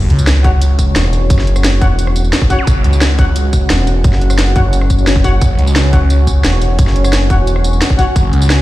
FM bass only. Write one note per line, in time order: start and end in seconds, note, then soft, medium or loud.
0.96 1.29 E1 loud
1.30 1.80 F#1 loud
1.82 2.32 E1 loud
3.70 4.03 E1 loud
4.04 4.54 F#1 loud
4.56 4.89 F#1 loud
4.90 5.40 F#1 loud
6.44 6.77 E1 loud
6.79 7.29 F#1 loud
7.30 7.80 E1 loud